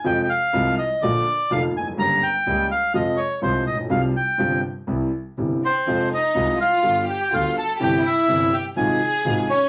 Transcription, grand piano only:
X:1
M:4/4
L:1/16
Q:1/4=124
K:Fm
V:1 name="Grand piano" clef=bass
[F,,C,F,A,F]2 z2 [C,,C,F,A,F]2 z2 [B,,,B,,=D,F,B,F]2 z2 [F,,,F,,D,F,B,F]2 z/2 =E,,/2 F,,/2 _G,,/2 | [G,,,G,,D,G,B,G]2 z2 [D,,D,G,B,G]2 z2 [F,,C,F,A,F]2 z2 [C,,C,F,A,F]2 z/2 =A,,,/2 B,,,/2 =B,,,/2 | [C,,C,F,G,F]2 z2 [G,,,G,,C,F,G,F]2 z2 [C,,C,=E,G,=E]2 z2 [G,,,G,,C,E,G,E]2 z2 | [F,,C,F,A,F]2 z2 [C,,C,F,A,F]2 z2 [G,,,G,,=D,G,=B,F]2 z2 [=D,,D,G,B,F]2 z2 |
[G,,,G,,C,=E,G,=E]2 z2 [G,,,G,,C,E,G,E]2 z2 [A,,,A,,C,F,A,F]2 z2 [A,,,A,,C,F,A,F]2 z2 |]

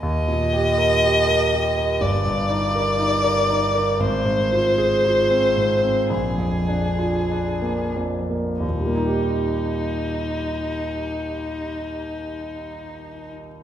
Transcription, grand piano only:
X:1
M:4/4
L:1/16
Q:1/4=54
K:Eb
V:1 name="Grand piano"
E,, B,, G B G B G B G,,, G,, E B E B E B | A,,, A,, F A F C A,, C B,,, F,, D F D B, F,, B, | [E,,B,,G,B,EG]16 |]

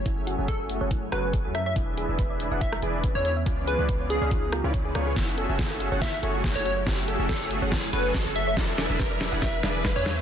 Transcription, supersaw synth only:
X:1
M:4/4
L:1/16
Q:"Swing 16ths" 1/4=141
K:F#m
V:1 name="Supersaw synth"
[CFGAe]3 [CFGAe]4 [CFGAf]2 z [CFGAc]3 [CFGAe] z2 | [DEGBe]3 [DEGBe]4 [DEGBf]2 z [DEGBd]3 [DEGBe] z2 | [C^EGBd]3 [CEGBd]4 [CEGB^e]2 z2 [CEGBd]3 [CEGBc]2 | [CFGAe]3 [CFGAe]4 [CFGAf]2 z [CFGAc]3 [CFGAe] z2 |
[CFGAe]3 [CFGAe]4 [CFGAf]2 z [CFGAc]3 [CFGAe] z2 | [DEGBe]3 [DEGBe]4 [DEGBf]2 z [DEGBd]3 [DEGBe] z2 |]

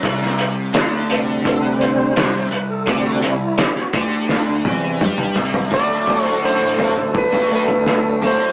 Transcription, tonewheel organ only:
X:1
M:4/4
L:1/16
Q:1/4=84
K:Dmix
V:1 name="Tonewheel organ"
B2 z6 A B c4 B A | G F E3 F G2 z8 | [F,A,DA]16 |]
V:2 name="Tonewheel organ" clef=bass
z6 [C,G,C]6 z4 | [C,G,C]2 z8 [C,G,C]2 z4 | z16 |]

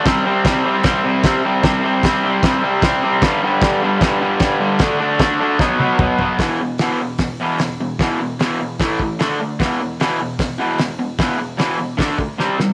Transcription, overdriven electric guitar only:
X:1
M:4/4
L:1/8
Q:1/4=151
K:Em
V:1 name="Overdriven electric guitar" clef=bass
[C,G,C] [C,G,C] [C,G,C] [C,G,C] [C,G,C] [C,G,C] [C,G,C] [C,G,C] | [C,G,C] [C,G,C] [C,G,C] [C,G,C] [C,G,C] [C,G,C] [C,G,C] [C,G,C] | [G,,D,G,] [G,,D,G,] [G,,D,G,] [G,,D,G,] [G,,D,G,] [G,,D,G,] [G,,D,G,] [G,,D,G,] | [D,A,D] [D,A,D] [D,A,D] [D,A,D] [B,,F,B,] [B,,F,B,] [B,,F,B,] [B,,F,B,] |
[E,,B,,E,] [E,,B,,] [E,,B,,E,] [E,,B,,] [E,,B,,] [E,,B,,E,] [E,,B,,] [E,,B,,] | [E,,B,,E,] [E,,B,,] [E,,B,,E,] [E,,B,,] [A,,E,A,] [A,,E,] [D,A,D] [D,A,] | [E,,B,,E,] [E,,B,,] [E,,B,,E,] [E,,B,,] [E,,B,,] [E,,B,,E,] [E,,B,,] [E,,B,,] | [E,,B,,E,] [E,,B,,] [E,,B,,E,] [E,,B,,] [D,A,D] [D,A,] [C,G,C] [C,G,] |]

